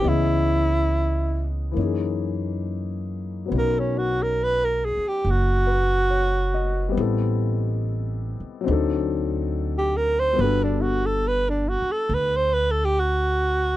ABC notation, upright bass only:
X:1
M:4/4
L:1/8
Q:"Swing" 1/4=70
K:Bphr
V:1 name="Upright bass" clef=bass
^C,,4 F,,4 | B,,,3 z F,,,4 | A,,,3 z D,,4 | G,,,3 z D,,4 |]